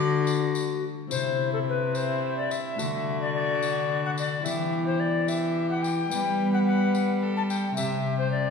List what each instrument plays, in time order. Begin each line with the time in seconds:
Already playing: cello D3, harp D3 A3 D4 F#4, recorder F#4, violin D5
0.27 tambourine
0.55 tambourine
1.07 harp C4 E4 G4, tambourine
1.11 harp C3, cello C3, violin E4, recorder C5
1.53 recorder A4
1.68 recorder B4
1.95 violin E4, recorder C5, tambourine
2.37 recorder D5
2.51 recorder E5, tambourine
2.75 cello D3, harp D3 A3 D4 F#4, violin F#4, tambourine
3.22 recorder D5
3.34 recorder D5
3.62 tambourine
4.05 recorder F#5
4.18 recorder D5, tambourine
4.42 harp E3 B3 G4, cello E3, violin G4, recorder E5, tambourine
4.87 recorder C5
5.00 recorder D5
5.28 violin G4, recorder E5, tambourine
5.71 recorder F#5
5.83 recorder G5, tambourine
6.10 cello G3, harp G3 B3 G4, violin B4, tambourine
6.54 recorder F#5
6.67 recorder F#5
6.95 tambourine
7.22 violin A4
7.37 recorder A5
7.49 recorder G5, tambourine
7.76 cello C3, harp C3 C4 G4, violin G4, recorder E5, tambourine
8.18 recorder C5
8.32 recorder D5